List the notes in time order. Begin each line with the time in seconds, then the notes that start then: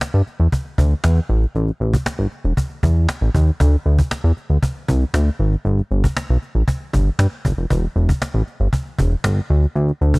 0.01 cajon slap
0.14 G2, cajon slap
0.27 cajon slap
0.40 E2, cajon slap
0.52 cajon bass
0.65 cajon slap
0.78 D2, cajon bass
0.91 cajon slap
1.04 E2, cajon slap
1.16 cajon slap
1.29 A1
1.42 cajon slap
1.55 A1, cajon slap
1.68 cajon slap
1.80 A1, cajon slap
1.94 cajon bass
2.06 cajon slap
2.19 G1, cajon slap
2.32 cajon slap
2.44 E1, cajon slap
2.57 cajon bass
2.70 cajon slap
2.83 E2, cajon bass
2.96 cajon slap
3.09 cajon slap
3.21 A1, cajon slap
3.35 D#2, cajon bass
3.47 cajon slap
3.60 D2, cajon bass
3.73 cajon slap
3.86 D2, cajon slap
3.99 cajon bass
4.11 cajon slap
4.24 E2, cajon slap
4.37 cajon slap
4.50 D2, cajon slap
4.63 cajon bass
4.76 cajon slap
4.88 C2, cajon bass
5.01 cajon slap
5.14 D2, cajon slap
5.27 cajon slap
5.39 G#1
5.53 cajon slap
5.65 G1, cajon slap
5.78 cajon slap
5.91 G1, cajon slap
6.04 cajon bass
6.17 cajon slap
6.29 B1, cajon slap
6.42 cajon slap
6.55 A1, cajon slap
6.68 cajon bass
6.81 cajon slap
6.93 G1, cajon bass
7.06 cajon slap
7.19 G2, cajon slap
7.32 cajon slap
7.45 G1, cajon bass
7.57 F1, cajon slap
7.70 E1, cajon bass
7.83 cajon slap
7.96 E1, cajon slap
8.09 cajon bass
8.22 cajon slap
8.34 A1, cajon slap
8.47 cajon slap
8.60 G1, cajon slap
8.73 cajon bass
8.86 cajon slap
8.98 E1, cajon bass
9.11 cajon slap
9.24 G1, cajon slap
9.37 cajon slap
9.50 D2
9.63 cajon slap
9.75 D2, cajon slap
9.88 cajon slap
10.01 D2, cajon slap
10.14 cajon bass